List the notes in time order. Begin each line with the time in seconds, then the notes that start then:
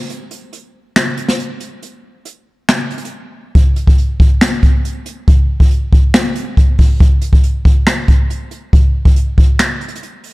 0.10 closed hi-hat
0.31 closed hi-hat
0.53 closed hi-hat
0.96 finger snap, snare, closed hi-hat
1.17 closed hi-hat
1.28 snare
1.40 closed hi-hat
1.60 closed hi-hat
1.82 closed hi-hat
2.25 closed hi-hat
2.69 finger snap, snare, closed hi-hat
2.90 closed hi-hat
2.98 closed hi-hat
3.05 closed hi-hat
3.55 kick, closed hi-hat
3.76 closed hi-hat
3.87 kick
3.98 closed hi-hat
4.20 kick
4.41 finger snap, snare, closed hi-hat
4.63 kick, closed hi-hat
4.85 closed hi-hat
5.06 closed hi-hat
5.28 kick, closed hi-hat
5.60 kick
5.71 closed hi-hat
5.93 kick
6.14 finger snap, snare, closed hi-hat
6.35 closed hi-hat
6.57 kick, closed hi-hat
6.78 kick, open hi-hat
7.00 kick, closed hi-hat
7.21 closed hi-hat
7.33 kick
7.43 closed hi-hat
7.65 kick
7.87 finger snap, snare, closed hi-hat
8.08 kick, closed hi-hat
8.30 closed hi-hat
8.51 closed hi-hat
8.73 kick, closed hi-hat
9.05 kick
9.16 closed hi-hat
9.38 kick
9.59 finger snap, snare, closed hi-hat
9.81 closed hi-hat
9.88 closed hi-hat
9.95 closed hi-hat
10.03 closed hi-hat
10.24 open hi-hat